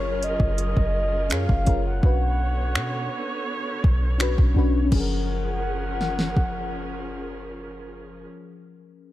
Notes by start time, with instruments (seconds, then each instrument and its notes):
Already playing: 808-style bass F#1, string section F#3 C#4 F4 G#4 A#4, fm electric piano C#4 F4 G#4 A#4, soft synth lead C#5
0.23 soft synth lead D#5, closed hi-hat
0.40 808-style bass F#1, kick
0.58 closed hi-hat
0.77 808-style bass F#1, kick
1.29 808-style bass F#2, fm electric piano C#4 F4 G#4 C#5, soft synth lead F5, finger snap, closed hi-hat
1.49 808-style bass F#1, kick
1.65 808-style bass F#1, fm electric piano C#4 F4 G#4 A#4, kick, closed hi-hat
1.87 soft synth lead F#5
2.01 808-style bass B1, string section D3 B3 C#5, fm electric piano C#4 D4 F#4, kick
2.05 fm electric piano B4
2.75 808-style bass B2, finger snap
3.84 808-style bass B1, kick
4.18 fm electric piano C#4 D4 F#4 B4, finger snap
4.38 808-style bass B1, kick
4.54 808-style bass B1, fm electric piano C#4 D4 F#4 B4
4.85 fm electric piano C#4
4.90 808-style bass F#1, fm electric piano F3, string section F3 C#4 G#4 A#4, soft synth lead F#5, kick, crash
4.95 fm electric piano G#4
5.00 fm electric piano A#4
6.01 snare
6.19 snare
6.37 kick